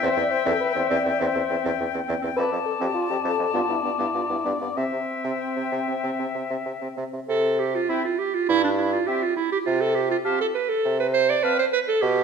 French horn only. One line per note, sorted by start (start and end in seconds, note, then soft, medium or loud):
0.03 0.17 C5 medium
0.18 0.33 D5 medium
0.31 0.46 C5 loud
0.47 0.60 A4 medium
0.60 0.75 B4 medium
0.76 0.91 C5 medium
0.90 1.21 D5 medium
1.19 1.79 C5 medium
2.36 2.50 B4 loud
2.66 2.72 A4 medium
2.81 2.93 G4 medium
2.94 3.09 F4 medium
3.10 3.17 G4 medium
3.25 3.53 A4 medium
3.54 3.69 F4 medium
3.69 3.82 E4 medium
3.83 3.90 D4 medium
3.99 4.15 E4 medium
4.14 4.29 F4 medium
4.30 4.46 E4 medium
4.45 4.61 D4 medium
4.61 4.68 B3 medium
4.76 6.62 C4 medium
7.89 8.05 C4 medium
9.08 9.24 C4 medium
10.25 10.41 C4 medium
11.44 11.60 C4 medium